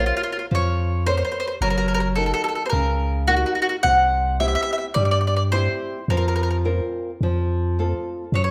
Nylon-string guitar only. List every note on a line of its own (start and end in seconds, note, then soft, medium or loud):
0.00 0.40 A#4 soft
0.00 0.40 C5 soft
0.00 0.41 C#5 soft
0.51 1.05 F3 medium
1.06 1.51 A#4 soft
1.06 1.51 C5 soft
1.06 1.52 C#5 soft
1.63 2.16 F#3 medium
2.17 2.62 D#4 soft
2.17 2.62 F#4 soft
2.17 2.62 A#4 soft
2.72 3.27 C#3 medium
3.28 3.73 D#4 soft
3.28 3.73 F#4 soft
3.28 3.73 A#4 soft
3.84 4.38 C3 medium
4.40 4.84 C4 soft
4.40 4.85 E4 soft
4.40 4.85 G4 soft
4.97 5.51 G3 medium
5.53 5.97 C4 soft
5.53 5.98 E4 soft
5.53 5.97 G4 medium
6.10 6.63 F3 medium
6.65 7.09 C4 soft
6.65 7.09 F4 soft
6.65 7.10 A#4 soft
7.23 7.76 F3 medium
7.79 8.23 C4 soft
7.79 8.23 F4 soft
7.79 8.24 A4 soft
8.34 8.51 F#3 medium